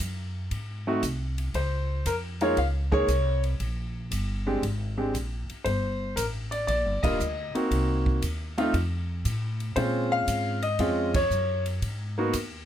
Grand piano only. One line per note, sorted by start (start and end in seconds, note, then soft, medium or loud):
0.87 1.01 A3 medium
0.87 1.01 C4 medium
0.87 1.02 D#4 medium
0.87 1.02 F#4 medium
1.55 2.08 C5 medium
2.07 2.14 A#4 medium
2.41 2.56 G#3 medium
2.41 2.56 A#3 medium
2.41 2.56 D#4 medium
2.41 2.56 F4 medium
2.41 2.57 C#5 medium
2.58 2.66 F5 loud
2.91 3.06 G#3 medium
2.91 3.07 A#3 medium
2.91 3.07 D#4 medium
2.91 3.07 G#4 medium
2.91 3.41 C#5 loud
4.47 4.61 G#3 medium
4.47 4.61 C4 medium
4.47 4.61 D4 medium
4.47 4.61 G4 medium
4.97 5.12 G#3 medium
4.97 5.12 C4 medium
4.97 5.13 D4 medium
4.97 5.12 G4 medium
5.64 6.18 C5 medium
6.16 6.24 A#4 medium
6.51 6.66 D5 medium
6.67 7.01 D5 medium
7.03 7.18 G3 medium
7.03 7.18 A#3 medium
7.03 7.19 D4 medium
7.03 7.19 F4 medium
7.03 7.51 D#5 medium
7.55 8.19 A#3 medium
7.55 8.19 C4 medium
7.55 8.19 D#4 medium
7.55 8.20 F#4 medium
8.58 8.72 A3 medium
8.58 8.73 C4 medium
8.58 8.73 D#4 medium
8.58 8.73 F4 medium
9.76 10.56 G#3 medium
9.76 10.56 C4 medium
9.76 10.56 C#4 medium
9.76 10.57 F4 medium
9.76 10.13 C5 medium
10.12 10.60 F5 loud
10.63 11.16 D#5 medium
10.79 11.11 G#3 medium
10.79 11.11 C4 medium
10.79 11.11 C#4 medium
10.79 11.11 F4 medium
11.16 11.63 C#5 medium
12.18 12.32 A#3 medium
12.18 12.32 B3 medium
12.18 12.32 D#4 medium
12.18 12.33 F#4 medium